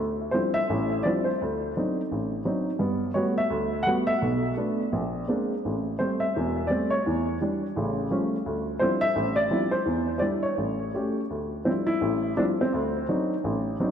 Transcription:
Already playing: D2
0.31 F3 G3 C4 D4 E4 C5
0.54 E5
0.70 A1 A2
1.03 F3 G3 C4 D4 E4 D5
1.24 C5
1.42 D2
1.77 F#3 C4 D4 D#4
2.12 A1
2.45 F#3 C4 D4 D#4
2.79 G2 B3
3.14 G3 A3 B3 F#4 C#5
3.38 E5
3.50 D2
3.83 G3 A3 F#5
3.87 B3 F#4
4.07 E5
4.22 B1 B2
4.57 A3 B3 D4
4.92 A#1
5.28 G#3 A#3 C4 D4
5.65 A1
5.99 G3 A3 C4 C5
6.20 E5
6.36 E1 E2
6.67 G3 A3 C4 D5
6.90 C#5
7.06 E2 E3
7.41 E3 G3 D4
7.76 A1 C#3
8.11 F3 G3 A3 C#4
8.46 D2
8.79 F3 G3 C4 D4 E4 C5
9.01 E5
9.16 A1
9.36 D5
9.51 F3 G3 C4 D4 E4
9.71 C5
9.86 E2
10.18 G3 D4 C5 D5
10.22 E4
10.43 C#5
10.58 A1
10.94 A3 C#4 G4
11.30 D2
11.65 F3 G3 C4 D4 E4
11.87 E4
12.01 A1
12.37 F3 G3 C4 D4 E4
12.61 C4
12.74 D2
13.09 F#3 C4 D4 D#4
13.44 A1
13.80 F#3 C4 D4 D#4

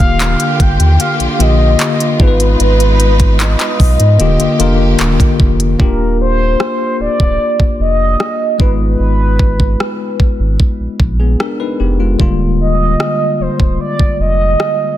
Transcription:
Already playing: D#1 D3 A#3 F4 G4 F5
0.00 kick, closed hi-hat
0.20 clap, closed hi-hat
0.40 closed hi-hat
0.60 G1 G5, kick, closed hi-hat
0.80 D#2, closed hi-hat
1.00 F5, closed hi-hat
1.20 A#1, closed hi-hat
1.34 F5
1.39 A#1 D3 A#3 F4 G4 D#5, closed hi-hat
1.79 clap, closed hi-hat
2.00 closed hi-hat
2.19 G#1 G#3 B3 D#4 F4 G#4 B4, kick
2.28 B4
2.40 closed hi-hat
2.60 G#1 B4, closed hi-hat
2.80 closed hi-hat
3.00 closed hi-hat
3.20 kick, closed hi-hat
3.40 D#5, clap, closed hi-hat
3.59 clap, closed hi-hat
3.80 B1, kick, open hi-hat
4.00 G#2, closed hi-hat
4.19 D#1 D3 A#3 F4 G4, closed hi-hat
4.40 F1, closed hi-hat
4.59 F1 D3 A#3 F4 A#4, closed hi-hat
4.99 D#1, clap, closed hi-hat
5.20 kick, closed hi-hat
5.40 F1, kick
5.60 closed hi-hat
5.79 D#1 A#3 D4 F4 G4 A#4, kick
6.21 C5
6.60 cross-stick
7.00 D1 D5
7.20 D1, kick
7.60 F1, kick
7.80 F1 D#5
8.20 cross-stick
8.58 G#1 G#3 B3 D#4 F4 B4, kick
8.82 B4
9.00 G#1
9.39 kick
9.60 kick
9.80 cross-stick
10.20 G#1, kick
10.40 G#1
10.60 kick
10.80 A#1
11.00 A#1, kick
11.20 B3 G#4
11.40 D4 A#4, cross-stick
11.60 D#4 B4
11.80 F1 B3 G4
12.00 G#3 F4
12.19 D#1 D3 G3 A#3 F4, kick
12.61 D#5
13.00 cross-stick
13.40 D1 C5
13.60 D1, kick
13.81 D5
13.99 F1, kick
14.20 F1 D#5
14.60 cross-stick

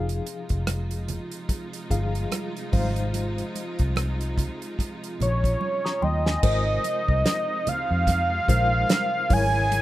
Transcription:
Already playing: F1 C3 F3 G#3 D#4 F4 G#4 F5
0.09 closed hi-hat
0.27 closed hi-hat
0.49 F1, kick, closed hi-hat
0.67 cross-stick, closed hi-hat, high conga
0.91 closed hi-hat
1.08 closed hi-hat, low conga
1.32 closed hi-hat
1.49 kick, cross-stick, closed hi-hat, muted conga
1.73 closed hi-hat
1.90 G1 F3 D#4 G#4 F5, kick, closed hi-hat
2.15 closed hi-hat
2.31 cross-stick, closed hi-hat, high conga
2.57 closed hi-hat
2.72 G#1 G#3 D#4 C5 F5, kick, open hi-hat, high conga
2.96 closed hi-hat
3.14 closed hi-hat, muted conga
3.38 closed hi-hat
3.56 closed hi-hat, muted conga
3.79 C2, kick, closed hi-hat
3.96 cross-stick, closed hi-hat, high conga
4.21 closed hi-hat
4.38 kick, closed hi-hat, low conga
4.62 closed hi-hat
4.79 kick, cross-stick, closed hi-hat, muted conga
5.04 closed hi-hat
5.20 A#1 C#5, closed hi-hat, low conga
5.44 kick, closed hi-hat
5.61 high conga
5.85 A#5 D#6, snare
6.02 D#2 D#5 G5 C6, high conga
6.26 D#5 G#5, snare
6.43 G#1 C3 F3 G#3 D#4 F4 A#4 C5, kick, crash, muted conga
6.84 closed hi-hat, muted conga
7.08 C2, kick
7.26 snare, closed hi-hat, high conga
7.67 F5, muted fingered electric bass stroke, closed hi-hat, low conga
7.91 F2
8.07 kick, snare, closed hi-hat, muted conga
8.48 A#1 G#3 F4 A#4 C5, kick, closed hi-hat, low conga
8.89 snare, closed hi-hat, high conga
9.29 G#1 C#3 E3 E4 A#4 C#5 G#5, kick, open hi-hat, high conga
9.72 closed hi-hat, muted conga

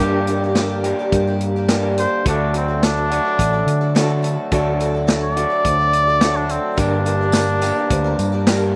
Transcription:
Already playing: G4
0.00 G2 D3 G3 A#3 D4 G4 A#4
0.27 G3 A#3 D4 G4 A#4, closed hi-hat
0.44 G3 A#3 D4 G4
0.55 G2 D3 G3 A#3 D4 G4 A#4, snare, closed hi-hat
0.84 G2 D3 G3 A#3 D4 G4, closed hi-hat
0.99 G3 A#3 D4 G4
1.11 G2 G3 A#3 D4 G4 A#4, kick, closed hi-hat
1.27 G3 A#3 D4 G4
1.41 closed hi-hat
1.56 G3 A#3 D4 G4
1.69 G2 D3 G3 A#3 D4 G4 A#4, snare, closed hi-hat
1.98 G3 A#3 D4 C5, closed hi-hat
2.02 G4
2.25 D2 D3 F#3 A3 D4 F#4 A4, kick, closed hi-hat
2.29 F#4 A4
2.54 A3 C4 D4 F#4 A4, closed hi-hat
2.68 D4 F#4 A4
2.81 D3 A3 D4 F#4 A4, snare, closed hi-hat
3.11 D3 F#3 A3 D4 F#4 A4, closed hi-hat
3.25 D4 F#4 A4
3.39 A1 A3 D4 F#4 A4, kick, closed hi-hat
3.53 D4 F#4 A4
3.66 D3, closed hi-hat
3.81 D4 F#4 A4
3.95 D3 F#3 A3 D4 F#4 A4, snare, closed hi-hat
4.09 D4 F#4 A4
4.22 A3 D4 F#4 A4, closed hi-hat
4.51 D2 D3 F#3 A3 D4 F#4 A4, kick, closed hi-hat
4.80 A3 D4 F#4 A4, closed hi-hat
4.95 D4 F#4 A4
5.07 D3 A3 D4 F#4 A4, snare, closed hi-hat
5.23 D5
5.36 D3 F#3 A3 D4 F#4 A4, closed hi-hat
5.50 D4 F#4 A4
5.64 D2 A3 D4 F#4 A4 C5, kick, closed hi-hat
5.79 D4 F#4 A4
5.93 closed hi-hat
6.07 D4 F#4 A4
6.21 D3 F#3 A3 D4 F#4 A4, snare, closed hi-hat
6.36 D4 F#4 A4
6.49 A3 C4 D4 F#4 A4, closed hi-hat
6.77 G1 G2 D3 G3 A#3 D4 G4 A#4, kick, closed hi-hat, tambourine
7.05 G3 A#3 D4 G4 A#4, closed hi-hat, tambourine
7.21 G3 A#3 D4 A#4
7.32 G2 D3 G3 D4 G4 A#4, snare, closed hi-hat, tambourine
7.37 A#3 D4 A#4
7.62 G2 D3 G3 A#3 D4 G4 A#4, closed hi-hat, tambourine
7.76 G3 A#3 D4 A#4
7.90 D2 G3 A#3 D4 G4 A#4 C5, kick, closed hi-hat, tambourine
8.04 G3 A#3 D4 A#4
8.18 G2, closed hi-hat, tambourine
8.32 G3 A#3 D4 A#4
8.47 G2 D3 G3 A#3 D4 G4 A#4, snare, closed hi-hat, tambourine
8.60 G3 A#3 D4 A#4

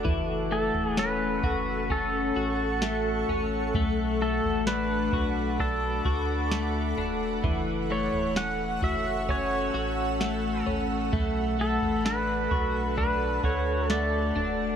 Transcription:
Already playing: A3 D4 F#4
0.04 F#1 E3 A4 F#5 C#6 E6, kick, floor tom
0.51 A3 A4
0.74 E1, floor tom
0.87 G#4
0.97 C#4 B4, snare
1.43 F#1 F#4, kick, floor tom
1.90 C#4 A4 F#6, kick
2.36 A1 F#4
2.82 A3, snare
3.28 A1 C#4, floor tom
3.74 B1 A3 B5 D6, kick, floor tom
4.21 A3 A4
4.44 A1, floor tom
4.67 D4 B4, snare
5.13 B1 F#4, kick, floor tom
5.60 D4 A4, kick
6.05 D2 F#4, kick
6.51 A3, snare
6.97 E1 D4, floor tom
7.44 F#1 E3 A4 C#6 E6, kick, floor tom
7.90 A3 C#5
8.13 E1, floor tom
8.36 C#4 F#5, snare
8.82 F#1 F#4 E5, kick, floor tom
9.29 C#4 C#5 B5, kick
9.74 A1 F#4
10.20 A3, snare
10.66 A1 C#4, floor tom
11.13 B1 A3 B5, kick, floor tom
11.59 A3 A4
11.82 A1, floor tom
12.05 D4 B4, snare
12.51 B1 F#4, kick, floor tom
12.97 D4 B4 A5, kick, floor tom
13.44 D2 F#4 C#5, kick
13.89 A3 A4 D5, snare
14.36 E1 D4, floor tom

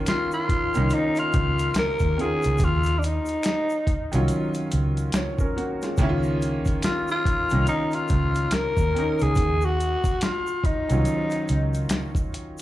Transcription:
Already playing: D#3 A#3 C#4 F4
0.06 F4, finger snap, snare, closed hi-hat, shaker
0.32 F4, shaker
0.49 muted fingered electric bass stroke, kick, closed hi-hat
0.74 C2 D#3 A#3 C#4 D#4, closed hi-hat, shaker
0.90 closed hi-hat, shaker
0.94 D#4
1.16 F4, closed hi-hat, shaker
1.32 C#2, kick, closed hi-hat, shaker
1.59 closed hi-hat, shaker
1.74 finger snap, muted fingered electric bass stroke, snare, closed hi-hat, shaker
1.79 A#4
1.99 D#2, kick, closed hi-hat, shaker
2.17 D#3 A#3 C#4 F4 G#4, closed hi-hat
2.42 C#2, closed hi-hat, shaker
2.58 D#2, kick, closed hi-hat, shaker
2.64 F4
2.83 closed hi-hat, shaker
2.99 D4, shaker
3.04 D#4, closed hi-hat
3.26 closed hi-hat, shaker
3.43 finger snap, snare, closed hi-hat, shaker
3.70 shaker
3.87 muted fingered electric bass stroke, kick, closed hi-hat
4.12 C2 D#3 F#3 C#4 F4, closed hi-hat, shaker
4.28 closed hi-hat, shaker
4.54 closed hi-hat, shaker
4.71 C#2, closed hi-hat, shaker
4.97 closed hi-hat, shaker
5.12 F4 C#5, finger snap, snare, closed hi-hat, shaker
5.39 C#4 A#4, kick, shaker
5.57 A#3 F#4, closed hi-hat
5.82 G#3 F4, snare, closed hi-hat, shaker
5.97 C#2 D#3 A#3, kick, closed hi-hat, shaker
6.01 C#4 E4
6.09 F4
6.23 shaker
6.42 closed hi-hat, shaker
6.65 kick, closed hi-hat, shaker
6.82 F4, finger snap, snare, closed hi-hat, shaker
7.08 F4, shaker
7.25 muted fingered electric bass stroke, kick, closed hi-hat
7.50 C2 D#3 A#3 C#4, closed hi-hat, shaker
7.54 D#4
7.67 D#4, closed hi-hat, shaker
7.91 F4, closed hi-hat, shaker
8.08 C#2, kick, closed hi-hat, shaker
8.35 closed hi-hat, shaker
8.51 A#4, finger snap, muted fingered electric bass stroke, snare, closed hi-hat, shaker
8.77 D#2, kick, closed hi-hat, shaker
8.95 D#3 A#3 C#4 D#4, closed hi-hat
9.19 C#2 G#4, closed hi-hat, shaker
9.35 D#2, kick, closed hi-hat, shaker
9.61 F#4, shaker
9.80 closed hi-hat, shaker
10.04 kick, closed hi-hat, shaker
10.21 F4, finger snap, snare, closed hi-hat, shaker
10.47 shaker
10.64 D#4, muted fingered electric bass stroke, kick, closed hi-hat
10.89 C2 D#3 F#3 C#4 F4, closed hi-hat, shaker
11.05 closed hi-hat, shaker
11.30 closed hi-hat, shaker
11.48 C#2, closed hi-hat, shaker
11.74 closed hi-hat, shaker
11.89 finger snap, snare, closed hi-hat, shaker
12.15 kick, closed hi-hat, shaker
12.34 closed hi-hat
12.58 shaker

